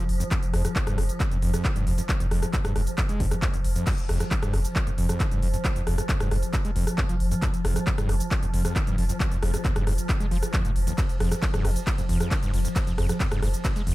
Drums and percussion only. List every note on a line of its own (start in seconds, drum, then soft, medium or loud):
0.09 open hi-hat loud
0.20 closed hi-hat soft
0.20 shaker medium
0.31 kick loud
0.31 clap loud
0.31 closed hi-hat medium
0.31 shaker medium
0.43 closed hi-hat medium
0.43 shaker soft
0.54 cross-stick medium
0.54 open hi-hat loud
0.65 cross-stick medium
0.65 closed hi-hat medium
0.65 shaker medium
0.76 kick loud
0.76 clap loud
0.76 closed hi-hat medium
0.76 shaker medium
0.87 cross-stick medium
0.87 closed hi-hat medium
0.87 shaker soft
0.98 cross-stick medium
0.98 open hi-hat loud
1.09 closed hi-hat medium
1.09 shaker medium
1.20 kick loud
1.20 clap loud
1.20 closed hi-hat medium
1.20 shaker medium
1.32 closed hi-hat medium
1.32 shaker soft
1.42 open hi-hat loud
1.54 cross-stick medium
1.54 closed hi-hat medium
1.54 shaker medium
1.65 kick loud
1.65 clap loud
1.65 closed hi-hat medium
1.65 shaker medium
1.76 closed hi-hat medium
1.76 shaker soft
1.87 open hi-hat loud
1.98 closed hi-hat medium
1.98 shaker medium
2.09 kick loud
2.09 clap loud
2.09 closed hi-hat medium
2.09 shaker medium
2.20 closed hi-hat medium
2.20 shaker soft
2.31 cross-stick medium
2.31 open hi-hat loud
2.43 cross-stick medium
2.43 closed hi-hat medium
2.43 shaker medium
2.54 kick loud
2.54 clap loud
2.54 closed hi-hat medium
2.54 shaker medium
2.65 cross-stick loud
2.65 closed hi-hat medium
2.65 shaker soft
2.76 cross-stick medium
2.76 open hi-hat loud
2.87 closed hi-hat medium
2.87 shaker medium
2.98 kick loud
2.98 clap loud
2.98 closed hi-hat medium
2.98 shaker medium
3.09 closed hi-hat medium
3.09 shaker soft
3.20 kick medium
3.20 open hi-hat loud
3.31 cross-stick medium
3.31 closed hi-hat medium
3.31 shaker medium
3.42 kick loud
3.42 clap loud
3.42 closed hi-hat medium
3.42 shaker soft
3.54 closed hi-hat medium
3.54 shaker soft
3.65 open hi-hat loud
3.76 closed hi-hat medium
3.76 shaker medium
3.87 kick loud
3.87 clap loud
3.87 closed hi-hat medium
3.87 crash medium
3.87 shaker medium
3.98 closed hi-hat medium
3.98 shaker soft
4.09 cross-stick medium
4.09 open hi-hat loud
4.20 cross-stick medium
4.20 closed hi-hat medium
4.20 shaker medium
4.31 kick loud
4.31 clap loud
4.31 closed hi-hat medium
4.31 shaker medium
4.43 cross-stick loud
4.43 closed hi-hat medium
4.43 shaker soft
4.54 cross-stick medium
4.54 open hi-hat loud
4.65 closed hi-hat medium
4.65 shaker medium
4.76 kick loud
4.76 clap loud
4.76 closed hi-hat medium
4.76 shaker medium
4.87 closed hi-hat medium
4.87 shaker soft
4.98 open hi-hat loud
5.09 cross-stick medium
5.09 closed hi-hat medium
5.09 shaker medium
5.20 kick loud
5.20 clap loud
5.20 closed hi-hat medium
5.20 shaker medium
5.32 closed hi-hat medium
5.32 shaker soft
5.42 open hi-hat loud
5.54 closed hi-hat medium
5.54 shaker medium
5.65 kick loud
5.65 clap loud
5.65 closed hi-hat medium
5.65 shaker medium
5.76 closed hi-hat medium
5.76 shaker soft
5.87 cross-stick medium
5.87 open hi-hat loud
5.98 cross-stick medium
5.98 closed hi-hat medium
5.98 shaker medium
6.09 kick loud
6.09 clap loud
6.09 closed hi-hat medium
6.09 shaker medium
6.20 cross-stick loud
6.20 closed hi-hat medium
6.20 shaker soft
6.31 cross-stick medium
6.31 open hi-hat loud
6.43 closed hi-hat medium
6.43 shaker medium
6.54 kick loud
6.54 clap loud
6.54 closed hi-hat medium
6.54 shaker medium
6.65 closed hi-hat medium
6.65 shaker soft
6.76 open hi-hat loud
6.87 cross-stick medium
6.87 closed hi-hat medium
6.87 shaker medium
6.98 kick loud
6.98 clap loud
6.98 closed hi-hat medium
6.98 shaker soft
7.09 closed hi-hat medium
7.09 shaker soft
7.20 open hi-hat loud
7.32 closed hi-hat medium
7.32 shaker medium
7.42 kick loud
7.42 clap loud
7.42 closed hi-hat medium
7.42 shaker medium
7.54 closed hi-hat medium
7.54 shaker soft
7.65 cross-stick loud
7.65 open hi-hat loud
7.76 cross-stick medium
7.76 closed hi-hat medium
7.76 shaker medium
7.87 kick loud
7.87 clap loud
7.87 closed hi-hat medium
7.87 shaker medium
7.98 cross-stick loud
7.98 closed hi-hat medium
7.98 shaker soft
8.09 cross-stick medium
8.09 open hi-hat loud
8.20 closed hi-hat medium
8.20 shaker medium
8.31 kick loud
8.31 clap loud
8.31 closed hi-hat medium
8.31 shaker medium
8.43 closed hi-hat medium
8.43 shaker soft
8.54 open hi-hat loud
8.65 cross-stick medium
8.65 closed hi-hat medium
8.65 shaker medium
8.76 kick loud
8.76 clap loud
8.76 closed hi-hat medium
8.76 shaker medium
8.87 closed hi-hat medium
8.87 shaker soft
8.98 open hi-hat loud
9.09 closed hi-hat medium
9.09 shaker medium
9.20 kick loud
9.20 clap loud
9.20 closed hi-hat medium
9.20 shaker medium
9.32 closed hi-hat medium
9.32 shaker soft
9.43 cross-stick loud
9.43 open hi-hat loud
9.54 cross-stick medium
9.54 closed hi-hat medium
9.54 shaker medium
9.65 kick loud
9.65 clap loud
9.65 closed hi-hat medium
9.65 shaker medium
9.76 cross-stick loud
9.76 closed hi-hat medium
9.76 shaker soft
9.87 cross-stick medium
9.87 open hi-hat loud
9.98 closed hi-hat medium
9.98 shaker medium
10.09 kick loud
10.09 clap loud
10.09 closed hi-hat medium
10.09 shaker medium
10.21 closed hi-hat medium
10.21 shaker soft
10.31 open hi-hat loud
10.43 cross-stick medium
10.43 closed hi-hat medium
10.43 shaker medium
10.54 kick loud
10.54 clap loud
10.54 closed hi-hat medium
10.54 shaker medium
10.65 closed hi-hat medium
10.65 shaker soft
10.76 open hi-hat loud
10.87 closed hi-hat medium
10.87 shaker medium
10.98 kick loud
10.98 clap loud
10.98 closed hi-hat medium
10.98 ride medium
10.98 shaker medium
11.09 closed hi-hat medium
11.09 shaker soft
11.20 cross-stick medium
11.20 open hi-hat loud
11.32 cross-stick medium
11.32 closed hi-hat soft
11.32 shaker medium
11.43 kick loud
11.43 clap loud
11.43 closed hi-hat medium
11.43 ride medium
11.43 shaker medium
11.54 cross-stick loud
11.54 closed hi-hat medium
11.54 shaker soft
11.65 cross-stick medium
11.65 open hi-hat loud
11.76 closed hi-hat medium
11.76 shaker medium
11.87 kick loud
11.87 clap loud
11.87 closed hi-hat medium
11.87 ride medium
11.87 shaker medium
11.98 closed hi-hat medium
11.98 shaker soft
12.09 open hi-hat loud
12.20 cross-stick medium
12.20 closed hi-hat medium
12.20 shaker medium
12.31 kick loud
12.31 clap loud
12.31 closed hi-hat medium
12.31 ride medium
12.31 shaker medium
12.43 closed hi-hat medium
12.43 shaker soft
12.54 open hi-hat loud
12.65 closed hi-hat medium
12.65 shaker medium
12.76 kick loud
12.76 clap loud
12.76 closed hi-hat medium
12.76 ride medium
12.76 shaker medium
12.87 closed hi-hat medium
12.87 shaker soft
12.98 cross-stick loud
12.98 open hi-hat loud
13.09 cross-stick medium
13.09 closed hi-hat medium
13.09 shaker medium
13.20 kick loud
13.20 clap loud
13.20 closed hi-hat medium
13.20 ride medium
13.20 shaker medium
13.32 cross-stick loud
13.32 closed hi-hat medium
13.32 shaker soft
13.43 cross-stick medium
13.43 open hi-hat loud
13.54 closed hi-hat medium
13.54 shaker medium
13.65 kick loud
13.65 clap loud
13.65 closed hi-hat medium
13.65 ride medium
13.65 shaker medium
13.76 closed hi-hat medium
13.76 shaker soft
13.87 open hi-hat loud